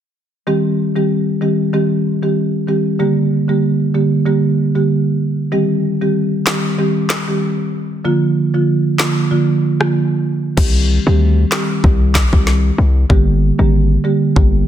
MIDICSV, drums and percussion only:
0, 0, Header, 1, 2, 480
1, 0, Start_track
1, 0, Key_signature, -3, "minor"
1, 0, Tempo, 631579
1, 356, Time_signature, 4, 2, 24, 8
1, 11156, End_track
2, 0, Start_track
2, 0, Title_t, "Drums"
2, 4914, Note_on_c, 9, 39, 85
2, 4915, Note_on_c, 9, 38, 109
2, 4990, Note_off_c, 9, 39, 0
2, 4991, Note_off_c, 9, 38, 0
2, 5394, Note_on_c, 9, 39, 82
2, 5396, Note_on_c, 9, 38, 107
2, 5470, Note_off_c, 9, 39, 0
2, 5472, Note_off_c, 9, 38, 0
2, 6835, Note_on_c, 9, 39, 86
2, 6836, Note_on_c, 9, 38, 105
2, 6911, Note_off_c, 9, 39, 0
2, 6912, Note_off_c, 9, 38, 0
2, 7453, Note_on_c, 9, 37, 88
2, 7529, Note_off_c, 9, 37, 0
2, 8036, Note_on_c, 9, 36, 114
2, 8037, Note_on_c, 9, 49, 88
2, 8112, Note_off_c, 9, 36, 0
2, 8113, Note_off_c, 9, 49, 0
2, 8753, Note_on_c, 9, 39, 83
2, 8755, Note_on_c, 9, 38, 106
2, 8829, Note_off_c, 9, 39, 0
2, 8831, Note_off_c, 9, 38, 0
2, 8998, Note_on_c, 9, 36, 101
2, 9074, Note_off_c, 9, 36, 0
2, 9234, Note_on_c, 9, 36, 99
2, 9234, Note_on_c, 9, 39, 85
2, 9235, Note_on_c, 9, 38, 103
2, 9310, Note_off_c, 9, 36, 0
2, 9310, Note_off_c, 9, 39, 0
2, 9311, Note_off_c, 9, 38, 0
2, 9369, Note_on_c, 9, 36, 93
2, 9445, Note_off_c, 9, 36, 0
2, 9477, Note_on_c, 9, 38, 65
2, 9553, Note_off_c, 9, 38, 0
2, 9955, Note_on_c, 9, 36, 112
2, 10031, Note_off_c, 9, 36, 0
2, 10917, Note_on_c, 9, 36, 102
2, 10993, Note_off_c, 9, 36, 0
2, 11156, End_track
0, 0, End_of_file